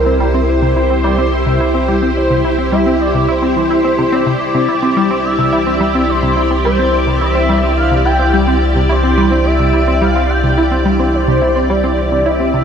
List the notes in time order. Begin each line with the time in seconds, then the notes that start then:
Already playing: C2 E4 G4 A#4 C5
0.06 C4
0.20 G3
0.34 C4
0.48 C5
0.62 C3
0.76 E4
0.90 C4
1.04 G3 D5
1.18 C4
1.32 E5
1.46 C3
1.60 E4
1.74 C4
1.88 G3
2.02 C4
2.17 C5
2.30 C3
2.44 E4
2.58 C4
2.72 G3 E5
2.86 C4
3.00 D5
3.14 C3
3.28 E4 C5
3.42 C4
3.56 E3
3.70 E4
3.84 C4
3.98 C3
4.12 C4 D5
4.26 C3
4.41 C2 D5
4.55 C3
4.68 E4
4.83 C4
4.97 G3
5.11 C4
5.25 E5
5.39 C3
5.52 E4 E5
5.67 C4
5.81 G3
5.95 C4
6.09 C5
6.23 C3
6.37 E4
6.51 C4
6.65 G3 C5
6.79 C4
7.07 C3
7.21 E4 E5
7.35 C4
7.49 G3
7.63 C4
7.77 F5
7.91 C3
8.05 E4 G5
8.19 C4
8.33 G3
8.47 C4
8.76 C3
8.89 E4 C5
9.03 C4
9.17 G3
9.31 C4
9.45 E5
9.60 C3
9.74 E4
9.87 C4
10.01 G3 F5
10.16 C4
10.29 G5
10.44 C3
10.58 E4
10.72 C4
10.86 G3
11.00 C4
11.14 C5
11.28 C3
11.42 E4
11.56 C4
11.70 G3 D5
11.84 C4
12.12 C3
12.26 E4 E5
12.40 C4
12.54 C3